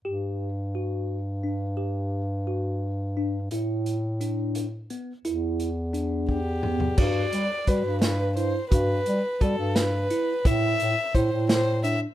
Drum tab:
CC |----------|----------|----------|----------|
HH |----------|----------|x-x-x-x-x-|x-x-x-----|
SD |----------|----------|----------|----------|
T2 |----------|----------|----------|--------o-|
FT |----------|----------|----------|---------o|
BD |----------|----------|----------|------o---|

CC |x---------|----------|----------|
HH |--x-x-x-x-|x-x-x-x-x-|x-x-x-x-x-|
SD |------o---|------o---|------o---|
T2 |----------|----------|----------|
FT |----------|----------|----------|
BD |o---o-----|o---o-----|o---o-----|